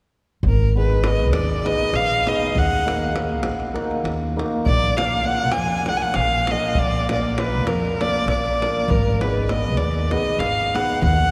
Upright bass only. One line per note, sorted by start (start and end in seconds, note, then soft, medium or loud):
0.43 1.31 G#1 medium
1.31 1.68 D#2 medium
1.93 2.31 A#1 medium
2.55 3.42 D#2 loud
3.42 3.80 A#1 medium
4.04 4.42 D#2 medium
4.68 5.53 A#1 medium
5.53 5.91 F2 loud
6.16 6.53 A#1 medium
6.77 7.64 A#1 medium
7.64 8.02 F2 medium
8.26 8.64 A#1 medium
8.88 9.76 G#1 medium
9.76 10.14 D#2 medium
10.38 10.76 G#1 medium
11.02 11.31 D#2 loud